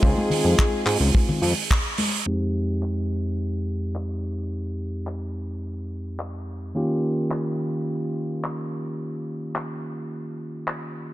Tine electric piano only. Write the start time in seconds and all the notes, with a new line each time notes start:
0.01 G#3 C4 D#4 F4
2.26 F2 G#3 C4 D#4 G4
6.75 D#3 A#3 C#4 F4 G4